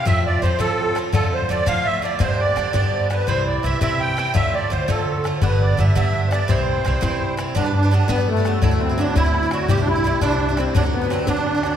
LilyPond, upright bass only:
\new Staff \with { instrumentName = "Upright bass" } { \clef bass \time 6/8 \key c \major \tempo 4. = 112 f,4 f,16 r16 f4. | f,4 f,16 r16 f4. | g,4 g,16 r16 g,4. | c,4 c,16 r16 c4. |
d,4 d,16 r16 d4. | g,,4 g,,16 r16 g,4. | c,4 c,16 r16 c4. | \key g \major g,4. g,4. |
d,4. d,4. | c,4. c,4. | d,4. d,4. | }